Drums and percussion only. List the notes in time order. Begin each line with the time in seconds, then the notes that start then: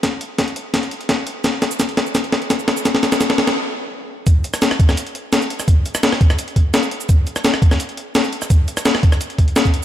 0.03 kick, snare, closed hi-hat
0.21 closed hi-hat
0.38 kick, snare, closed hi-hat
0.48 closed hi-hat
0.56 closed hi-hat
0.74 kick, snare, closed hi-hat
0.83 closed hi-hat
0.91 closed hi-hat
1.01 closed hi-hat
1.09 kick, snare, closed hi-hat
1.27 closed hi-hat
1.44 kick, snare, closed hi-hat, shaker
1.62 snare, closed hi-hat, shaker
1.71 shaker
1.80 kick, snare, closed hi-hat, shaker
1.89 closed hi-hat
1.97 snare, closed hi-hat
2.06 shaker
2.15 kick, snare, closed hi-hat, shaker
2.24 closed hi-hat
2.32 snare, closed hi-hat
2.42 closed hi-hat
2.50 kick, snare, closed hi-hat, shaker
2.59 shaker
2.68 snare, closed hi-hat
2.77 shaker
2.85 kick, snare, closed hi-hat, shaker
2.95 snare
3.03 snare, closed hi-hat, shaker
3.12 snare, shaker
3.21 kick, snare, closed hi-hat, shaker
3.30 snare, closed hi-hat
3.38 snare, closed hi-hat
3.47 snare, shaker
4.27 kick, closed hi-hat, shaker
4.44 closed hi-hat, shaker
4.54 cross-stick, closed hi-hat, shaker
4.62 snare, closed hi-hat, shaker
4.71 cross-stick, closed hi-hat
4.80 kick, closed hi-hat
4.89 cross-stick, snare, shaker
4.97 closed hi-hat, shaker
5.07 closed hi-hat
5.15 closed hi-hat
5.33 snare, closed hi-hat, shaker
5.42 shaker
5.50 closed hi-hat
5.60 cross-stick, shaker
5.68 kick, closed hi-hat, shaker
5.86 closed hi-hat, shaker
5.95 cross-stick, closed hi-hat, shaker
6.03 snare, closed hi-hat, shaker
6.13 cross-stick, snare, closed hi-hat
6.21 kick, closed hi-hat
6.30 cross-stick, shaker
6.39 closed hi-hat, shaker
6.48 closed hi-hat
6.56 kick, closed hi-hat
6.74 snare, closed hi-hat, shaker
6.83 shaker
6.91 closed hi-hat
7.01 shaker
7.09 kick, closed hi-hat, shaker
7.27 closed hi-hat, shaker
7.36 cross-stick, closed hi-hat, shaker
7.45 snare, closed hi-hat, shaker
7.54 cross-stick, closed hi-hat
7.62 kick, closed hi-hat
7.71 cross-stick, snare, shaker
7.80 closed hi-hat, shaker
7.89 closed hi-hat
7.97 closed hi-hat
8.15 snare, closed hi-hat, shaker
8.24 shaker
8.33 closed hi-hat
8.42 cross-stick, shaker
8.50 kick, closed hi-hat, shaker
8.68 closed hi-hat, shaker
8.77 cross-stick, closed hi-hat, shaker
8.85 snare, closed hi-hat, shaker
8.95 cross-stick, snare, closed hi-hat
9.03 kick, closed hi-hat
9.12 cross-stick, shaker
9.21 closed hi-hat, shaker
9.30 closed hi-hat
9.38 kick, closed hi-hat
9.48 closed hi-hat
9.56 snare, closed hi-hat, shaker
9.65 kick, shaker
9.74 closed hi-hat